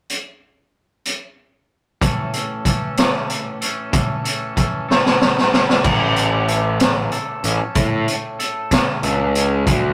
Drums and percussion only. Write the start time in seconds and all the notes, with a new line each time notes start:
0.10 closed hi-hat
1.05 closed hi-hat
2.02 kick, closed hi-hat
2.33 closed hi-hat
2.65 kick, closed hi-hat
2.97 snare, closed hi-hat
3.30 closed hi-hat
3.62 closed hi-hat
3.93 kick, closed hi-hat
4.25 closed hi-hat
4.57 kick, closed hi-hat
4.90 snare
5.06 snare
5.21 snare
5.38 snare
5.53 snare
5.69 snare
5.84 kick, crash
6.16 closed hi-hat
6.48 closed hi-hat
6.80 snare, closed hi-hat
7.12 closed hi-hat
7.44 closed hi-hat
7.75 kick, closed hi-hat
8.08 closed hi-hat
8.40 closed hi-hat
8.71 kick, snare, closed hi-hat
9.03 closed hi-hat
9.35 closed hi-hat
9.67 kick, closed hi-hat